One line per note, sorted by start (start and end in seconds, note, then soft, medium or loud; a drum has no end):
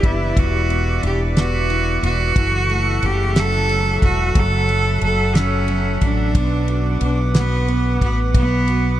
0.00 0.35 F#1 medium
0.00 0.36 E3 medium
0.00 0.05 B3 medium
0.00 0.33 D4 medium
0.00 2.32 B4 medium
0.00 2.32 D5 medium
0.00 2.32 E5 medium
0.00 2.32 D6 medium
0.00 kick medium
0.00 ride medium
0.05 0.68 B3 medium
0.05 0.40 E4 medium
0.36 0.99 E1 loud
0.36 1.69 E3 medium
0.36 1.04 F#4 medium
0.36 kick loud
0.36 ride medium
0.69 1.35 B3 medium
0.69 ride soft
1.03 1.99 E1 medium
1.03 2.32 D4 medium
1.03 1.20 G4 medium
1.03 ride medium
1.37 2.02 B3 medium
1.37 2.00 F#4 medium
1.37 snare loud
1.37 ride medium
1.70 2.34 E3 medium
1.70 ride soft
2.03 2.34 E1 medium
2.03 2.35 B3 medium
2.03 3.07 F#4 loud
2.03 ride medium
2.36 2.99 F#1 loud
2.36 4.32 E3 medium
2.36 6.32 A4 medium
2.36 6.31 E5 medium
2.36 9.00 F#5 medium
2.36 4.34 C#6 medium
2.36 kick loud
2.36 ride medium
2.70 3.99 A3 medium
2.70 ride soft
3.02 3.98 F#1 loud
3.02 4.32 C#3 medium
3.02 3.40 G4 medium
3.02 ride medium
3.36 3.69 F#3 medium
3.36 4.04 A4 loud
3.36 snare loud
3.36 ride medium
3.69 4.02 F#3 medium
3.69 ride soft
4.02 4.34 E1 medium
4.02 4.34 F#3 soft
4.02 4.40 F#4 loud
4.02 kick medium
4.02 ride medium
4.35 4.98 F#1 loud
4.35 4.69 F#3 medium
4.35 5.04 A4 loud
4.35 6.34 B5 medium
4.35 kick loud
4.35 ride medium
4.69 5.02 F#3 medium
4.69 ride soft
5.01 5.98 F#1 medium
5.01 5.35 F#3 medium
5.01 5.38 A4 medium
5.01 ride medium
5.35 5.68 F#3 soft
5.35 6.02 C#4 medium
5.35 snare loud
5.35 ride medium
5.68 6.01 F#3 medium
5.68 ride soft
6.01 6.33 A1 medium
6.01 6.35 F#3 soft
6.01 6.99 D4 medium
6.01 kick medium
6.01 ride medium
6.35 6.98 B1 loud
6.35 7.01 B3 medium
6.35 9.00 B4 medium
6.35 9.00 D6 medium
6.35 kick loud
6.35 ride medium
6.68 7.34 F#4 soft
6.68 ride soft
7.01 7.97 B1 medium
7.01 7.67 B3 medium
7.01 7.18 D4 medium
7.01 ride medium
7.34 7.99 B3 medium
7.34 8.01 F#4 medium
7.34 snare loud
7.34 ride medium
7.68 8.34 B3 medium
7.68 ride soft
8.01 8.33 A1 medium
8.01 8.18 B3 medium
8.01 8.68 F#4 medium
8.01 kick medium
8.01 ride medium
8.34 8.97 B1 loud
8.34 9.00 B3 medium
8.34 9.00 B3 loud
8.34 kick loud
8.34 ride medium
8.68 9.00 F#4 medium
8.68 ride soft